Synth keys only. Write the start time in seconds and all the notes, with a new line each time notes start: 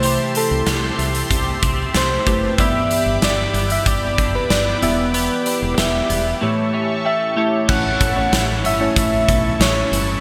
Already playing: C3 A3 E4 G4 C5
2.26 A3 E4 G4 B4
2.58 G2 B3 E4 G4 D5
4.82 E3 B3 E4 G4 D5
6.41 A2 A3 E4 G4 C#5
6.74 E5
7.05 G5
7.37 A3 E4 G4 C#5 A5
7.69 A2 A3 C#4 E4 C#5
8.16 A3 C#4 E4 C#5
8.80 A3 C#4 E4 C#5